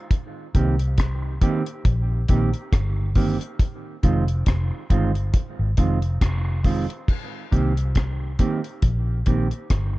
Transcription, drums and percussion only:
0.11 kick, closed hi-hat
0.55 kick, closed hi-hat
0.79 closed hi-hat
0.98 kick, cross-stick, closed hi-hat
1.42 kick, closed hi-hat
1.66 closed hi-hat
1.85 kick, closed hi-hat
2.28 kick, closed hi-hat
2.54 closed hi-hat
2.73 kick, cross-stick, closed hi-hat
3.15 kick, open hi-hat
3.41 closed hi-hat
3.59 kick, closed hi-hat
4.03 kick, closed hi-hat
4.28 closed hi-hat
4.46 kick, cross-stick, closed hi-hat
4.90 kick, closed hi-hat
5.15 closed hi-hat
5.34 kick, closed hi-hat
5.77 kick, closed hi-hat
6.02 closed hi-hat
6.21 kick, cross-stick, closed hi-hat
6.64 kick, open hi-hat
6.90 closed hi-hat
7.08 kick, crash
7.52 kick, closed hi-hat
7.77 closed hi-hat
7.95 kick, cross-stick, closed hi-hat
8.39 kick, closed hi-hat
8.64 closed hi-hat
8.82 kick, closed hi-hat
9.26 kick, closed hi-hat
9.51 closed hi-hat
9.70 kick, cross-stick, closed hi-hat

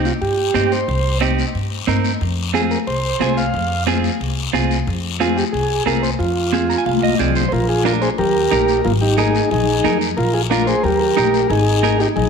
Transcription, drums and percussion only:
0.05 short guiro
0.21 high conga, long guiro
0.54 high conga, short guiro
0.72 short guiro
0.88 high conga, long guiro
1.21 high conga, short guiro
1.38 short guiro
1.55 high conga, long guiro
1.88 high conga, short guiro
2.04 short guiro
2.21 high conga, long guiro
2.54 high conga, short guiro
2.71 short guiro
2.87 high conga, long guiro
3.20 high conga, short guiro
3.37 short guiro
3.54 high conga, long guiro
3.87 high conga, short guiro
4.04 short guiro
4.21 high conga, long guiro
4.54 high conga, short guiro
4.71 short guiro
4.87 high conga, long guiro
5.20 high conga, short guiro
5.38 short guiro
5.54 high conga, long guiro
5.87 high conga, short guiro
6.03 short guiro
6.20 high conga, long guiro
6.53 high conga, short guiro
6.70 short guiro
6.86 high conga, long guiro
6.98 high conga
7.08 high conga
7.19 low conga, short guiro
7.30 low conga
7.35 short guiro
7.41 low conga
7.52 high conga, long guiro
7.85 high conga, short guiro
8.02 short guiro
8.18 high conga, low conga, long guiro
8.52 high conga, short guiro
8.68 short guiro
8.85 high conga, low conga, long guiro
9.18 high conga, short guiro
9.35 short guiro
9.51 high conga, low conga, long guiro
9.84 high conga, low conga, short guiro
10.01 short guiro
10.18 high conga, long guiro
10.51 high conga, short guiro
10.67 short guiro
10.84 high conga, low conga, long guiro
11.17 high conga, short guiro
11.34 short guiro
11.50 high conga, long guiro
11.83 high conga, short guiro
12.00 short guiro
12.16 high conga, low conga, long guiro

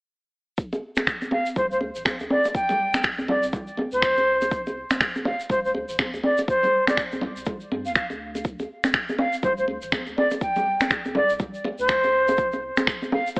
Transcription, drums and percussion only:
0.58 kick, shaker
0.73 muted conga, shaker
0.97 finger snap, high conga, shaker
1.07 finger snap, kick, muted conga, shaker
1.22 high conga, shaker
1.31 muted conga, high conga
1.46 shaker
1.56 kick, muted conga, low conga, shaker
1.71 shaker
1.81 muted conga
1.95 shaker
2.05 finger snap, kick, high conga, shaker
2.19 muted conga, shaker
2.30 high conga
2.45 muted conga, shaker
2.55 kick, shaker
2.69 muted conga, low conga, shaker
2.94 finger snap, high conga, shaker
3.03 finger snap, kick, muted conga, shaker
3.18 high conga, shaker
3.28 muted conga, high conga, low conga
3.43 shaker
3.53 kick, muted conga, low conga, shaker
3.67 shaker
3.77 muted conga, high conga
3.92 shaker
4.02 finger snap, kick, shaker
4.17 muted conga, shaker
4.41 muted conga, shaker
4.51 kick, shaker
4.67 muted conga, shaker
4.91 finger snap, high conga, shaker
5.00 finger snap, kick, muted conga, shaker
5.15 high conga, shaker
5.25 muted conga, high conga
5.40 shaker
5.50 kick, muted conga, low conga, shaker
5.65 shaker
5.75 muted conga
5.89 shaker
5.99 finger snap, kick, high conga, shaker
6.14 muted conga, shaker
6.23 high conga
6.38 muted conga, shaker
6.48 kick, shaker
6.63 muted conga, low conga, shaker
6.87 finger snap, high conga, shaker
6.97 finger snap, kick, muted conga, shaker
7.12 high conga, shaker
7.21 muted conga, high conga, low conga
7.37 shaker
7.46 kick, muted conga, low conga, shaker
7.60 shaker
7.72 muted conga, high conga
7.86 shaker
7.95 finger snap, kick, shaker
8.10 muted conga, shaker
8.35 muted conga, shaker
8.45 kick, shaker
8.59 muted conga, shaker
8.84 finger snap, high conga, shaker
8.93 finger snap, kick, muted conga, shaker
9.09 high conga, shaker
9.18 muted conga, high conga
9.33 shaker
9.43 kick, muted conga, low conga, shaker
9.58 shaker
9.68 muted conga
9.82 shaker
9.92 finger snap, kick, high conga, shaker
10.06 muted conga, shaker
10.18 high conga
10.31 muted conga, shaker
10.41 kick, shaker
10.56 muted conga, low conga, shaker
10.80 finger snap, high conga, shaker
10.90 finger snap, kick, muted conga, shaker
11.05 high conga, shaker
11.15 muted conga, high conga, low conga
11.30 shaker
11.40 kick, muted conga, low conga, shaker
11.54 shaker
11.64 muted conga, high conga
11.78 shaker
11.88 finger snap, kick, shaker
12.03 muted conga, shaker
12.28 muted conga, shaker
12.37 kick, shaker
12.52 muted conga, shaker
12.77 finger snap, high conga, shaker
12.87 finger snap, kick, muted conga, shaker
13.02 high conga, shaker
13.12 muted conga, high conga
13.27 shaker
13.36 kick, muted conga, shaker

